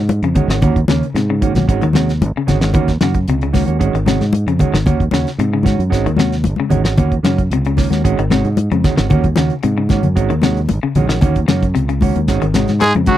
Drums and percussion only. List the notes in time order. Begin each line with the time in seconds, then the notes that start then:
0.09 closed hi-hat, high conga
0.23 closed hi-hat
0.35 kick, closed hi-hat, low conga
0.50 snare, closed hi-hat
0.62 kick, closed hi-hat, low conga
0.76 kick, closed hi-hat
0.88 snare, closed hi-hat, high conga
1.03 closed hi-hat
1.16 snare, closed hi-hat
1.42 kick, closed hi-hat, high conga
1.55 snare, closed hi-hat, high conga, low conga
1.69 kick, closed hi-hat
1.81 closed hi-hat, high conga
1.93 snare, closed hi-hat, high conga
2.09 snare, closed hi-hat
2.22 closed hi-hat, high conga
2.48 snare, closed hi-hat, low conga
2.61 snare, closed hi-hat
2.74 kick, closed hi-hat, low conga
2.88 kick, snare, closed hi-hat
3.01 snare, closed hi-hat, high conga
3.14 kick, closed hi-hat
3.28 closed hi-hat
3.41 closed hi-hat
3.54 kick, snare, open hi-hat, high conga
3.68 closed hi-hat
3.81 kick, closed hi-hat
3.95 closed hi-hat
4.06 snare, closed hi-hat, high conga
4.21 snare, closed hi-hat
4.33 closed hi-hat, high conga
4.48 closed hi-hat
4.59 kick, closed hi-hat, low conga
4.74 snare, closed hi-hat
4.86 kick, closed hi-hat, low conga
5.00 kick, closed hi-hat
5.11 snare, closed hi-hat, high conga
5.27 snare, closed hi-hat
5.39 closed hi-hat
5.63 kick, snare, closed hi-hat, high conga
5.80 closed hi-hat
5.92 kick, snare, closed hi-hat
6.06 closed hi-hat
6.17 snare, closed hi-hat, high conga
6.32 snare, closed hi-hat
6.44 closed hi-hat, high conga
6.56 high conga
6.70 closed hi-hat, low conga
6.85 snare, closed hi-hat
6.97 kick, closed hi-hat, low conga
7.12 kick, closed hi-hat
7.24 snare, closed hi-hat, high conga
7.38 kick, closed hi-hat
7.51 closed hi-hat
7.65 closed hi-hat
7.77 kick, snare, open hi-hat, high conga
7.91 snare, closed hi-hat, high conga
8.05 kick, closed hi-hat
8.19 closed hi-hat
8.30 snare, closed hi-hat, high conga
8.45 closed hi-hat
8.57 closed hi-hat, high conga
8.71 closed hi-hat, high conga
8.84 kick, snare, closed hi-hat, low conga
8.97 snare, closed hi-hat
9.10 kick, closed hi-hat, low conga
9.24 kick, closed hi-hat, high conga
9.36 snare, closed hi-hat, high conga
9.50 closed hi-hat
9.63 closed hi-hat
9.89 kick, snare, closed hi-hat, high conga
10.03 closed hi-hat, low conga
10.17 kick, closed hi-hat
10.30 closed hi-hat
10.42 snare, closed hi-hat, high conga
10.57 closed hi-hat
10.69 closed hi-hat, high conga
10.95 closed hi-hat, low conga
11.09 snare, closed hi-hat
11.21 kick, closed hi-hat, low conga
11.36 kick, closed hi-hat
11.48 snare, closed hi-hat, high conga
11.62 kick, closed hi-hat
11.76 closed hi-hat
11.89 closed hi-hat
12.01 kick, open hi-hat, high conga
12.16 closed hi-hat, high conga
12.28 kick, snare, closed hi-hat
12.42 closed hi-hat
12.54 snare, closed hi-hat, high conga
12.68 snare, closed hi-hat
12.80 closed hi-hat, high conga
12.94 closed hi-hat, high conga
13.06 kick, closed hi-hat, high conga